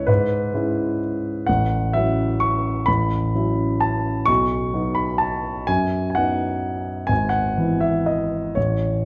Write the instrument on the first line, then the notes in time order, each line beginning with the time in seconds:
grand piano
Already playing: C#2 G#3 C#4 E4 B4 C#5 E5
0.07 G#2 B4
0.54 G#3 C#4 E4
1.46 A1 F#5
1.93 F#3 C#4 E4 E5
2.40 C#6
2.86 A1 B5
3.35 F#3 C#4 E4
3.80 A5
4.26 B1 C#6
4.74 F#3 B3 D#4
4.95 B5
5.18 A5
5.67 F#2 G#5
6.10 G#5
6.15 F#3 B3 D#4 F#5
7.07 G#1 G#5
7.29 F#5
7.57 E3 B3 E4
7.80 E5
8.06 D#5
8.55 A1 C#5